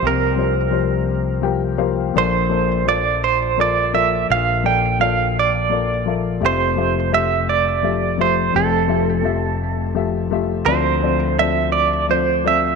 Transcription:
<<
  \new Staff \with { instrumentName = "Clean electric guitar" } { \time 6/8 \key f \major \tempo 4. = 56 bes'2 r4 | c''4 d''8 c''8 d''8 e''8 | f''8 g''8 f''8 d''4 r8 | c''4 e''8 d''4 c''8 |
a'2 r4 | c''4 e''8 d''8 c''8 e''8 | }
  \new Staff \with { instrumentName = "Upright piano" } { \time 6/8 \key f \major <f bes g' d''>8 <f bes g' c''>8 <f bes g' c''>4 <f bes g' bes' g''>8 <f bes g' c'' f''>8 | <f bes a' d''>8 <f bes a' c''>8 <f bes a' d''>4 <f bes a' d''>8 <f bes a' d''>8~ | <f bes a' d''>8 <f bes a' d''>8 <f bes a' d''>4 <f bes a' d''>8 <f bes a' e''>8 | <f a g' e''>8 <f a g' e''>8 <f a g' e''>4 <f a g' e''>8 <f a g' e''>8~ |
<f a g' e''>8 <f a g' e''>8 <f a g' e''>4 <f a g' e''>8 <f a g' e''>8 | <f c' a' d''>8 <f c' a' d''>8 <f c' a' d''>4 <f c' a' d''>8 <f c' a' d''>8 | }
  \new Staff \with { instrumentName = "Upright piano" } { \clef bass \time 6/8 \key f \major <c, c>2. | <bes,, bes,>2. | <bes,, bes,>2. | <f,, f,>2. |
<f,, f,>2. | <d, d>2. | }
  \new Staff \with { instrumentName = "Fretless electric bass" } { \clef bass \time 6/8 \key f \major c,2. | bes,,2. | bes,,2. | f,,2. |
f,,2. | d,2. | }
>>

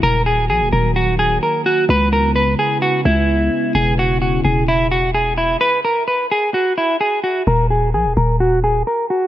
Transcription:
<<
  \new Staff \with { instrumentName = "Clean electric guitar" } { \time 4/4 \key ees \phrygian \tempo 4 = 129 bes'8 aes'8 aes'8 bes'8 ges'8 aes'8 bes'8 ges'8 | ces''8 bes'8 ces''8 aes'8 ges'8 fes'4. | gis'8 ges'8 ges'8 gis'8 e'8 ges'8 gis'8 e'8 | ces''8 bes'8 ces''8 aes'8 ges'8 fes'8 aes'8 ges'8 |
bes'8 aes'8 aes'8 bes'8 ges'8 aes'8 bes'8 ges'8 | }
  \new Staff \with { instrumentName = "Analog synth pad" } { \clef bass \time 4/4 \key ees \phrygian << { <ges bes ges'>1 | <aes ces' fes'>1~ | <aes ces' fes'>1 | r1 |
r1 | } \\ { ees1 | des1 | cis1 | r1 |
r1 | } >> }
  \new Staff \with { instrumentName = "808-style bass" } { \clef bass \time 4/4 \key ees \phrygian ees,,4 bes,,16 ees,,16 ees,,4. r4 | des,4. r4 des,4 r8 | e,,4. e,,2~ e,,8 | r1 |
ees,,4 bes,,16 ees,,16 ees,,4. r4 | }
>>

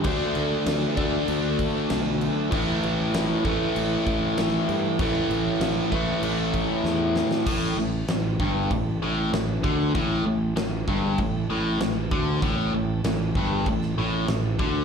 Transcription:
<<
  \new Staff \with { instrumentName = "Overdriven electric guitar" } { \clef bass \time 4/4 \key g \lydian \tempo 4 = 97 <d a d'>4. <d a d'>2~ <d a d'>8 | <a, e a>4. <a, e a>2~ <a, e a>8 | <a, e a>4. <a, e a>2~ <a, e a>8 | a,8 a,8 a,8 g,8 a,8 a,8 a,8 d8 |
a,8 a,8 a,8 g,8 a,8 a,8 a,8 d8 | a,8 a,8 a,8 g,8 a,8 a,8 a,8 d8 | }
  \new Staff \with { instrumentName = "Fingered electric bass" } { \clef bass \time 4/4 \key g \lydian d,8 d,8 d,8 d,8 d,4 b,,4 | a,,8 a,,8 a,,8 a,,8 a,,8 a,,8 a,,8 g,8 | a,,8 a,,8 a,,8 a,,8 a,,4 e,4 | a,,8 a,,8 a,,8 g,,8 a,,8 a,,8 a,,8 d,8 |
a,,8 a,,8 a,,8 g,,8 a,,8 a,,8 a,,8 d,8 | a,,8 a,,8 a,,8 g,,8 a,,8 a,,8 a,,8 d,8 | }
  \new DrumStaff \with { instrumentName = "Drums" } \drummode { \time 4/4 <cymc bd>8 cymc8 <cymc sn>8 <cymc bd>8 cymc8 <cymc bd>8 <cymc sn>8 cymc8 | <cymc bd>8 cymc8 <cymc sn>8 <cymc bd>8 cymc8 <cymc bd>8 <cymc sn>8 cymc8 | <cymc bd>8 cymc8 <cymc sn>8 <cymc bd>8 cymc8 <cymc bd>8 sn8 sn16 sn16 | <cymc bd>4 <cymc sn>8 bd8 <cymc bd>4 <cymc sn>8 bd8 |
<cymc bd>4 <cymc sn>8 bd8 <cymc bd>4 <cymc sn>8 bd8 | <cymc bd>4 <cymc sn>8 bd8 <cymc bd>16 sn8. <cymc sn>8 bd8 | }
>>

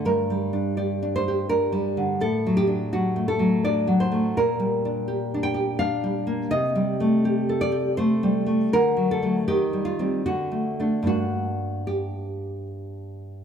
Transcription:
\new Staff \with { instrumentName = "Nylon-string guitar" } { \time 3/4 \key g \minor \tempo 4 = 82 << { bes'4 d''8 c''8 bes'4 | a'8 g'8 fis'8 a'8 d''8 c''8 | bes'4. g''8 f''4 | ees''4. d''8 c''8 r8 |
bes'8 a'8 g'8 f'8 fis'4 | fis'4 g'4 r4 | } \\ { \tuplet 3/2 { g,8 g8 d'8 g'8 d'8 g'8 d'8 g8 d8 } | \tuplet 3/2 { a,8 fis8 d'8 fis8 a8 fis8 d'8 fis8 a8 } | \tuplet 3/2 { bes,8 g8 d'8 g'8 d'8 g'8 d'8 g8 bes8 } | \tuplet 3/2 { c8 g8 a8 g'8 a'8 g'8 a8 g8 a8 } |
\tuplet 3/2 { d8 fis8 <fis a>8 ees8 g8 <g c'>8 d8 a8 <a d'>8 } | <g, bes d'>2. | } >> }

